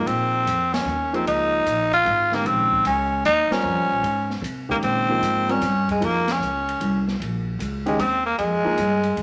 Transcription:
0.00 0.44 F3 medium
0.00 0.44 A#3 medium
0.00 0.44 D#4 medium
0.00 0.44 G#4 medium
0.06 0.45 A#2 medium
0.06 0.75 C4 loud
0.06 ride medium
0.46 0.84 F2 medium
0.46 hi-hat pedal medium
0.46 ride medium
0.73 1.16 C#4 medium
0.73 snare medium
0.73 ride medium
0.85 1.24 D#2 medium
0.85 hi-hat pedal soft
1.13 1.63 F3 medium
1.13 1.63 A#3 medium
1.13 1.27 C4 medium
1.13 1.63 D#4 medium
1.13 1.63 G#4 medium
1.13 ride soft
1.25 1.64 C#2 medium
1.25 1.89 D#4 loud
1.25 ride medium
1.66 2.04 A#1 medium
1.66 hi-hat pedal medium
1.66 ride medium
1.93 2.36 F4 loud
1.93 ride soft
2.05 2.44 G#1 medium
2.05 ride medium
2.32 2.82 C#3 medium
2.32 2.82 D#3 medium
2.32 2.82 G#3 medium
2.32 2.48 A#3 medium
2.32 2.82 G4 medium
2.32 snare medium
2.45 2.83 A#1 medium
2.45 2.86 C4 loud
2.45 ride medium
2.72 kick medium
2.85 3.23 C#2 medium
2.85 3.23 C#4 medium
2.85 hi-hat pedal soft
2.85 ride medium
3.25 3.49 D#2 loud
3.25 3.54 D#4 loud
3.25 hi-hat pedal soft
3.25 ride medium
3.50 4.01 G3 medium
3.50 4.39 C#4 loud
3.50 4.01 F4 medium
3.50 4.01 A#4 medium
3.50 4.01 C5 medium
3.50 muted upright bass stroke soft
3.50 snare medium
3.50 ride medium
3.64 3.78 F2 medium
3.77 3.89 C#2 medium
3.90 4.02 A#1 medium
4.03 4.41 G#2 medium
4.03 ride medium
4.30 snare soft
4.42 4.81 C3 medium
4.42 hi-hat pedal medium
4.42 ride medium
4.69 5.20 C#3 medium
4.69 5.19 D#3 medium
4.69 5.19 G#3 medium
4.69 4.76 A#3 medium
4.69 5.20 G4 medium
4.69 kick soft
4.81 5.20 A#2 medium
4.81 5.52 C4 medium
4.81 ride medium
5.09 5.46 F3 medium
5.09 5.46 A#3 medium
5.09 5.46 D#4 medium
5.09 5.46 G#4 medium
5.21 5.60 G#2 medium
5.21 hi-hat pedal medium
5.21 ride medium
5.48 5.60 G3 medium
5.48 5.61 C4 medium
5.48 5.89 C#4 medium
5.48 5.61 F4 medium
5.48 5.61 A#4 medium
5.48 ride soft
5.61 6.00 G2 medium
5.61 snare soft
5.61 hi-hat pedal medium
5.61 ride medium
5.88 6.06 G#3 medium
5.88 kick medium
5.88 ride soft
6.00 6.39 F2 medium
6.00 6.25 F3 medium
6.00 6.25 A#3 soft
6.00 6.33 A#3 medium
6.00 6.25 D#4 soft
6.00 6.25 G#4 medium
6.00 ride medium
6.28 7.09 C#4 medium
6.28 snare medium
6.28 ride medium
6.40 6.79 C#2 medium
6.40 hi-hat pedal medium
6.69 ride medium
6.80 7.19 C2 medium
6.80 ride medium
7.08 snare soft
7.20 7.58 A#1 medium
7.20 ride medium
7.59 7.98 C#2 medium
7.59 hi-hat pedal medium
7.59 ride medium
7.86 7.98 D#3 medium
7.86 7.98 G#3 medium
7.86 8.01 G#3 medium
7.86 7.98 C#4 medium
7.86 7.98 G4 medium
7.86 ride soft
7.99 8.37 D#2 medium
7.99 8.25 C4 medium
7.99 hi-hat pedal soft
7.99 ride medium
8.26 8.38 A#3 medium
8.38 8.63 F2 medium
8.38 9.23 G#3 loud
8.38 ride medium
8.65 8.77 F3 medium
8.65 8.77 A#3 medium
8.65 8.77 D#4 medium
8.65 8.77 G#4 medium
8.65 muted upright bass stroke soft
8.78 9.16 G2 medium
8.78 hi-hat pedal medium
8.78 ride medium
9.03 ride soft
9.17 9.23 G#2 medium
9.17 ride medium

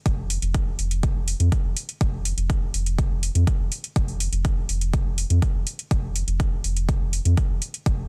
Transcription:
0.06 0.37 F1 loud
0.06 kick loud
0.06 closed hi-hat medium
0.30 open hi-hat medium
0.42 0.74 F1 loud
0.42 closed hi-hat soft
0.54 kick loud
0.54 closed hi-hat medium
0.79 1.10 F1 medium
0.79 open hi-hat medium
0.91 closed hi-hat soft
1.03 kick loud
1.03 closed hi-hat soft
1.15 1.34 F1 medium
1.28 open hi-hat medium
1.40 1.49 F2 loud
1.40 closed hi-hat soft
1.52 kick loud
1.52 closed hi-hat medium
1.64 1.73 F1 loud
1.77 open hi-hat medium
1.89 closed hi-hat soft
2.01 2.33 F1 loud
2.01 kick loud
2.01 closed hi-hat soft
2.25 open hi-hat medium
2.37 2.69 F1 medium
2.37 closed hi-hat soft
2.50 kick loud
2.50 closed hi-hat soft
2.74 3.06 F1 medium
2.74 open hi-hat medium
2.86 closed hi-hat soft
2.98 kick loud
2.98 closed hi-hat soft
3.11 3.29 F1 loud
3.23 open hi-hat medium
3.35 3.44 F2 loud
3.35 closed hi-hat soft
3.47 kick loud
3.47 closed hi-hat medium
3.59 3.68 F1 loud
3.72 open hi-hat medium
3.84 closed hi-hat soft
3.96 4.28 F1 loud
3.96 kick loud
3.96 closed hi-hat soft
4.08 open hi-hat soft
4.20 open hi-hat medium
4.32 4.64 F1 loud
4.32 closed hi-hat soft
4.45 kick loud
4.45 closed hi-hat soft
4.69 5.01 F1 medium
4.69 open hi-hat medium
4.81 closed hi-hat soft
4.93 kick loud
4.93 closed hi-hat soft
5.06 5.24 F1 medium
5.18 open hi-hat medium
5.30 5.39 F2 loud
5.30 closed hi-hat soft
5.42 kick loud
5.42 closed hi-hat soft
5.54 5.64 F1 loud
5.67 open hi-hat medium
5.79 closed hi-hat soft
5.91 6.23 F1 loud
5.91 kick loud
5.91 closed hi-hat soft
6.16 open hi-hat medium
6.28 6.59 F1 loud
6.28 closed hi-hat soft
6.40 kick loud
6.40 closed hi-hat soft
6.64 6.96 F1 medium
6.64 open hi-hat medium
6.77 closed hi-hat soft
6.89 kick loud
6.89 closed hi-hat soft
7.01 7.19 F1 loud
7.13 open hi-hat medium
7.25 7.34 F2 loud
7.25 closed hi-hat soft
7.37 kick loud
7.37 closed hi-hat soft
7.50 7.59 F1 loud
7.62 open hi-hat medium
7.74 closed hi-hat soft
7.86 8.08 F1 loud
7.86 kick loud
7.86 closed hi-hat soft

